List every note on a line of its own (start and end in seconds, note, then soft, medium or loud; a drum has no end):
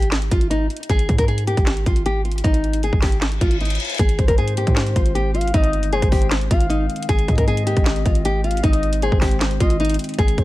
0.00 0.29 G#1 loud
0.00 closed hi-hat medium
0.11 snare loud
0.11 clap medium
0.11 closed hi-hat medium
0.22 closed hi-hat medium
0.31 0.69 G#1 loud
0.31 0.47 F4 medium
0.31 kick loud
0.31 closed hi-hat medium
0.41 closed hi-hat medium
0.50 0.66 D#4 medium
0.50 closed hi-hat medium
0.70 closed hi-hat soft
0.77 closed hi-hat medium
0.83 closed hi-hat medium
0.89 1.08 G#1 loud
0.89 1.17 G#4 loud
0.89 kick loud
0.89 closed hi-hat medium
0.99 closed hi-hat medium
1.09 1.55 G#2 loud
1.09 kick medium
1.09 closed hi-hat medium
1.18 1.26 A#4 medium
1.18 kick loud
1.18 closed hi-hat medium
1.28 1.43 G#4 medium
1.28 closed hi-hat soft
1.38 closed hi-hat medium
1.47 1.84 G4 medium
1.47 closed hi-hat medium
1.57 1.85 G#1 loud
1.57 kick loud
1.57 closed hi-hat medium
1.66 snare loud
1.66 clap medium
1.66 closed hi-hat medium
1.77 closed hi-hat medium
1.86 2.42 G#1 loud
1.86 2.01 F4 medium
1.86 kick loud
1.86 closed hi-hat medium
1.96 closed hi-hat medium
2.06 2.21 G4 medium
2.06 closed hi-hat medium
2.25 2.40 F4 medium
2.25 closed hi-hat soft
2.31 closed hi-hat medium
2.38 closed hi-hat medium
2.44 2.91 G#1 loud
2.44 2.80 D#4 loud
2.44 kick loud
2.44 closed hi-hat medium
2.54 closed hi-hat medium
2.64 closed hi-hat medium
2.73 closed hi-hat medium
2.83 2.98 G#4 medium
2.83 closed hi-hat medium
2.93 3.39 G#1 loud
2.93 kick loud
3.02 3.17 G4 medium
3.02 kick medium
3.02 snare medium
3.02 clap medium
3.02 open hi-hat medium
3.12 closed hi-hat medium
3.21 snare loud
3.21 clap medium
3.21 closed hi-hat medium
3.21 reverse cymbal medium
3.32 closed hi-hat medium
3.41 3.78 G#1 loud
3.41 3.56 F4 medium
3.41 kick loud
3.41 closed hi-hat medium
3.51 closed hi-hat medium
3.61 3.76 D#4 medium
3.61 closed hi-hat medium
3.65 closed hi-hat medium
3.70 closed hi-hat medium
3.75 closed hi-hat medium
3.80 closed hi-hat medium
3.85 closed hi-hat medium
3.90 closed hi-hat medium
3.94 closed hi-hat medium
3.99 4.18 G#1 loud
3.99 10.44 D#3 medium
3.99 10.44 G#3 medium
3.99 10.44 C4 medium
3.99 4.27 G#4 loud
3.99 kick loud
3.99 closed hi-hat medium
4.09 closed hi-hat medium
4.18 4.39 G#1 loud
4.18 5.31 C5 medium
4.18 kick loud
4.18 closed hi-hat medium
4.28 4.36 A#4 medium
4.28 kick loud
4.28 closed hi-hat medium
4.38 4.65 G#2 loud
4.38 4.53 G#4 medium
4.38 closed hi-hat soft
4.48 closed hi-hat medium
4.57 4.94 G4 medium
4.57 closed hi-hat medium
4.67 4.95 G#2 loud
4.67 kick loud
4.67 closed hi-hat medium
4.76 snare loud
4.76 clap medium
4.76 closed hi-hat medium
4.87 closed hi-hat medium
4.96 5.52 G#1 loud
4.96 5.11 F4 medium
4.96 kick loud
4.96 closed hi-hat medium
5.06 closed hi-hat medium
5.15 5.30 G4 medium
5.15 closed hi-hat medium
5.34 5.49 F4 medium
5.34 5.53 F5 medium
5.34 closed hi-hat soft
5.41 closed hi-hat medium
5.48 closed hi-hat medium
5.54 5.75 G#1 loud
5.54 5.90 D#4 loud
5.54 5.90 D#5 loud
5.54 kick loud
5.54 closed hi-hat medium
5.64 closed hi-hat medium
5.73 6.01 G1 loud
5.73 closed hi-hat medium
5.83 closed hi-hat medium
5.93 6.08 G#4 medium
5.93 6.47 C5 medium
5.93 closed hi-hat soft
6.02 6.49 G#1 loud
6.02 kick loud
6.02 closed hi-hat medium
6.12 6.27 G4 medium
6.12 kick loud
6.12 open hi-hat medium
6.22 closed hi-hat medium
6.31 snare loud
6.31 clap medium
6.31 closed hi-hat medium
6.41 closed hi-hat medium
6.51 6.88 G#1 loud
6.51 6.66 F4 medium
6.51 7.05 F5 medium
6.51 kick loud
6.51 closed hi-hat medium
6.61 closed hi-hat medium
6.70 6.85 D#4 medium
6.70 closed hi-hat medium
6.90 closed hi-hat soft
6.96 closed hi-hat medium
7.03 closed hi-hat medium
7.09 7.27 G#1 loud
7.09 7.36 G#4 loud
7.09 kick loud
7.09 closed hi-hat medium
7.19 closed hi-hat medium
7.28 7.75 G#2 loud
7.28 8.40 D#5 medium
7.28 kick medium
7.28 closed hi-hat medium
7.38 7.45 A#4 medium
7.38 kick loud
7.38 closed hi-hat medium
7.48 7.63 G#4 loud
7.48 closed hi-hat medium
7.57 closed hi-hat medium
7.67 8.03 G4 medium
7.67 closed hi-hat medium
7.77 8.05 G#1 loud
7.77 kick loud
7.77 closed hi-hat medium
7.85 snare loud
7.85 clap medium
7.85 closed hi-hat medium
7.96 closed hi-hat medium
8.06 8.61 G#1 loud
8.06 8.21 F4 medium
8.06 kick loud
8.06 closed hi-hat medium
8.15 closed hi-hat medium
8.25 8.40 G4 medium
8.25 closed hi-hat medium
8.44 8.59 F4 medium
8.44 8.63 F5 medium
8.44 closed hi-hat soft
8.51 closed hi-hat medium
8.57 closed hi-hat medium
8.63 9.10 G#1 loud
8.63 9.00 D#4 medium
8.63 9.00 D#5 loud
8.63 kick loud
8.63 closed hi-hat medium
8.73 closed hi-hat medium
8.83 closed hi-hat medium
8.93 closed hi-hat medium
9.02 9.18 G#4 medium
9.02 9.57 C5 medium
9.02 closed hi-hat medium
9.12 9.59 G#1 loud
9.12 kick loud
9.21 9.37 G4 medium
9.21 kick loud
9.21 snare medium
9.21 clap medium
9.21 open hi-hat medium
9.31 closed hi-hat medium
9.40 snare loud
9.40 clap medium
9.40 closed hi-hat medium
9.51 closed hi-hat medium
9.60 9.98 G#1 loud
9.60 9.75 F4 medium
9.60 9.79 D#5 medium
9.60 kick loud
9.60 closed hi-hat loud
9.70 closed hi-hat medium
9.80 9.95 D#4 medium
9.80 closed hi-hat medium
9.85 closed hi-hat medium
9.90 closed hi-hat medium
9.94 closed hi-hat medium
9.99 closed hi-hat medium
10.04 closed hi-hat medium
10.09 closed hi-hat medium
10.14 closed hi-hat medium
10.19 10.37 G#1 loud
10.19 10.44 G#4 loud
10.19 kick loud
10.19 closed hi-hat medium
10.28 closed hi-hat medium
10.38 10.44 G#1 loud
10.38 10.44 C5 medium
10.38 kick loud
10.38 closed hi-hat medium